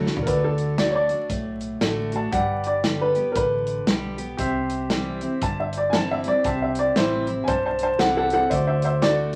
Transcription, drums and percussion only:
0.07 snare
0.17 floor tom
0.27 kick, closed hi-hat
0.58 closed hi-hat
0.78 snare, closed hi-hat
1.09 closed hi-hat
1.30 kick, closed hi-hat
1.61 closed hi-hat
1.81 snare, closed hi-hat
2.12 closed hi-hat
2.32 kick, closed hi-hat
2.64 closed hi-hat
2.84 snare, closed hi-hat
3.15 closed hi-hat
3.35 kick, closed hi-hat
3.67 closed hi-hat
3.87 snare, closed hi-hat
4.18 closed hi-hat
4.39 kick, closed hi-hat
4.70 closed hi-hat
4.90 snare, closed hi-hat
5.21 closed hi-hat
5.41 kick, closed hi-hat
5.73 closed hi-hat
5.93 snare, closed hi-hat
6.24 closed hi-hat
6.44 kick, closed hi-hat
6.75 closed hi-hat
6.96 snare, closed hi-hat
7.27 closed hi-hat
7.48 kick, closed hi-hat
7.79 closed hi-hat
7.99 snare, closed hi-hat
8.30 closed hi-hat
8.51 kick, closed hi-hat
8.82 closed hi-hat
9.02 snare, closed hi-hat

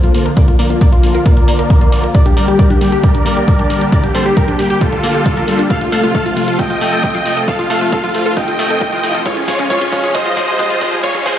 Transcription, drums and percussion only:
0.03 closed hi-hat
0.14 open hi-hat
0.26 closed hi-hat
0.37 kick, closed hi-hat
0.48 closed hi-hat
0.59 open hi-hat
0.70 closed hi-hat
0.81 kick, closed hi-hat
0.92 closed hi-hat
1.03 open hi-hat
1.15 closed hi-hat
1.26 kick, closed hi-hat
1.37 closed hi-hat
1.48 open hi-hat
1.59 closed hi-hat
1.70 kick, closed hi-hat
1.81 closed hi-hat
1.92 open hi-hat
2.04 closed hi-hat
2.15 kick, closed hi-hat
2.26 closed hi-hat
2.37 open hi-hat
2.48 closed hi-hat
2.59 kick, closed hi-hat
2.70 closed hi-hat
2.81 open hi-hat
2.92 closed hi-hat
3.03 kick, closed hi-hat
3.15 closed hi-hat
3.26 open hi-hat
3.37 closed hi-hat
3.48 kick, closed hi-hat
3.59 closed hi-hat
3.70 open hi-hat
3.81 closed hi-hat
3.92 kick, closed hi-hat
4.03 closed hi-hat
4.15 open hi-hat
4.26 closed hi-hat
4.37 kick, closed hi-hat
4.48 closed hi-hat
4.59 open hi-hat
4.70 closed hi-hat
4.81 kick, closed hi-hat
4.92 closed hi-hat
5.04 open hi-hat
5.15 closed hi-hat
5.26 kick, closed hi-hat
5.37 closed hi-hat
5.48 open hi-hat
5.59 closed hi-hat
5.70 kick, closed hi-hat
5.81 closed hi-hat
5.92 open hi-hat
6.03 closed hi-hat
6.15 kick, closed hi-hat
6.26 closed hi-hat
6.37 open hi-hat
6.48 closed hi-hat
6.59 kick, closed hi-hat
6.70 closed hi-hat
6.81 open hi-hat
6.92 closed hi-hat
7.03 kick, closed hi-hat
7.15 closed hi-hat
7.26 open hi-hat
7.37 closed hi-hat
7.48 kick, closed hi-hat
7.59 closed hi-hat
7.70 open hi-hat
7.81 closed hi-hat
7.92 kick, closed hi-hat
8.04 closed hi-hat
8.15 open hi-hat
8.26 closed hi-hat
8.37 kick, closed hi-hat
8.48 closed hi-hat
8.59 open hi-hat
8.70 closed hi-hat
8.81 kick, closed hi-hat
8.92 closed hi-hat
9.03 open hi-hat
9.15 closed hi-hat
9.26 kick, closed hi-hat
9.37 closed hi-hat
9.48 kick, open hi-hat
9.59 closed hi-hat
9.70 kick, closed hi-hat
9.81 closed hi-hat
9.92 kick, open hi-hat
10.03 closed hi-hat
10.15 kick, closed hi-hat
10.26 closed hi-hat
10.37 kick, open hi-hat
10.48 closed hi-hat
10.59 kick, closed hi-hat
10.70 closed hi-hat
10.81 kick, open hi-hat
10.92 closed hi-hat
11.03 kick, closed hi-hat
11.15 kick, closed hi-hat
11.26 kick, open hi-hat

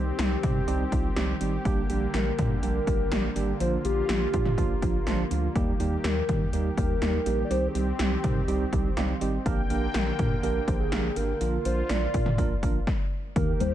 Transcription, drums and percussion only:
0.19 snare, closed hi-hat
0.43 kick, closed hi-hat, mid tom
0.68 closed hi-hat
0.92 kick, closed hi-hat
1.16 snare, closed hi-hat
1.41 closed hi-hat
1.65 kick, closed hi-hat
1.90 closed hi-hat
2.14 snare, closed hi-hat
2.39 kick, closed hi-hat, mid tom
2.63 closed hi-hat
2.87 kick, closed hi-hat
3.12 snare, closed hi-hat
3.36 closed hi-hat
3.60 closed hi-hat
3.85 closed hi-hat
4.09 snare, closed hi-hat
4.34 kick, closed hi-hat
4.46 mid tom
4.58 kick, closed hi-hat
4.82 kick, closed hi-hat
5.07 snare, closed hi-hat
5.31 closed hi-hat
5.56 kick, closed hi-hat
5.80 closed hi-hat
6.04 snare, closed hi-hat
6.29 kick, closed hi-hat, mid tom
6.53 closed hi-hat
6.78 kick, closed hi-hat
7.02 snare, closed hi-hat
7.26 closed hi-hat
7.51 closed hi-hat
7.75 closed hi-hat
7.99 snare, closed hi-hat
8.24 kick, closed hi-hat, mid tom
8.48 closed hi-hat
8.73 kick, closed hi-hat
8.97 snare, closed hi-hat
9.21 closed hi-hat
9.46 kick, closed hi-hat
9.70 closed hi-hat
9.94 snare, closed hi-hat
10.19 kick, closed hi-hat, mid tom
10.43 closed hi-hat
10.68 kick, closed hi-hat
10.92 snare, closed hi-hat
11.16 closed hi-hat
11.41 closed hi-hat
11.65 closed hi-hat
11.89 snare, closed hi-hat
12.14 kick, closed hi-hat
12.26 mid tom
12.38 kick, closed hi-hat
12.63 kick, closed hi-hat
12.87 kick, snare
13.36 kick, closed hi-hat
13.60 closed hi-hat

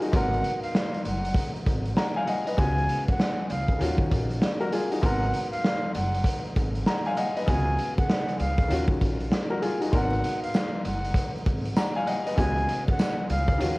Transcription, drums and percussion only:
0.02 closed hi-hat
0.13 kick, closed hi-hat
0.33 closed hi-hat
0.44 closed hi-hat
0.63 closed hi-hat
0.75 snare
0.94 closed hi-hat
1.05 closed hi-hat
1.25 closed hi-hat
1.35 kick, closed hi-hat
1.56 closed hi-hat
1.67 kick, closed hi-hat
1.85 closed hi-hat
1.97 snare
2.28 closed hi-hat
2.47 closed hi-hat
2.58 kick, closed hi-hat
2.78 closed hi-hat
2.89 closed hi-hat
3.08 kick, closed hi-hat
3.20 snare
3.50 closed hi-hat
3.68 kick, closed hi-hat
3.81 closed hi-hat
3.98 kick, closed hi-hat
4.11 kick, closed hi-hat
4.30 closed hi-hat
4.42 snare
4.60 closed hi-hat
4.72 closed hi-hat
4.92 closed hi-hat
5.03 kick, closed hi-hat
5.23 closed hi-hat
5.34 closed hi-hat
5.53 closed hi-hat
5.64 snare
5.95 closed hi-hat
6.14 closed hi-hat
6.24 kick, closed hi-hat
6.45 closed hi-hat
6.56 kick, closed hi-hat
6.75 closed hi-hat
6.86 snare
7.05 closed hi-hat
7.17 closed hi-hat
7.37 closed hi-hat
7.48 kick, closed hi-hat
7.79 closed hi-hat
7.98 kick, closed hi-hat
8.10 snare
8.29 closed hi-hat
8.39 closed hi-hat
8.58 kick, closed hi-hat
8.70 closed hi-hat
8.88 kick, closed hi-hat
9.01 kick, closed hi-hat
9.20 closed hi-hat
9.32 snare
9.62 closed hi-hat
9.82 closed hi-hat
9.93 kick, closed hi-hat
10.13 closed hi-hat
10.24 closed hi-hat
10.43 closed hi-hat
10.54 snare, tambourine
10.85 closed hi-hat
11.04 closed hi-hat
11.14 kick, closed hi-hat
11.35 closed hi-hat
11.46 kick, closed hi-hat
11.65 closed hi-hat
11.76 snare, tambourine
11.95 closed hi-hat
12.07 closed hi-hat
12.27 closed hi-hat
12.38 kick, closed hi-hat
12.58 closed hi-hat
12.69 closed hi-hat
12.88 kick, closed hi-hat
12.99 snare, tambourine
13.30 closed hi-hat
13.48 kick, closed hi-hat
13.60 closed hi-hat

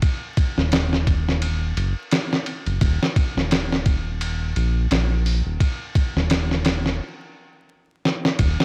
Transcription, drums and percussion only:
0.02 kick, ride
0.37 kick, ride
0.58 snare
0.72 snare, ride
0.93 snare
1.07 kick, ride
1.29 snare
1.42 ride
1.77 ride
2.11 snare, ride
2.33 snare
2.46 ride
2.66 ride
2.81 kick, ride
3.03 snare
3.16 kick, ride
3.38 snare
3.51 snare, ride
3.72 snare
3.86 kick, ride
4.21 ride
4.56 ride
4.91 snare, ride
5.26 open hi-hat
5.60 kick, ride
5.95 kick, ride
6.17 snare
6.30 snare, ride
6.51 snare
6.65 snare, ride
6.86 snare
8.05 snare
8.25 snare
8.39 kick, ride
8.60 snare

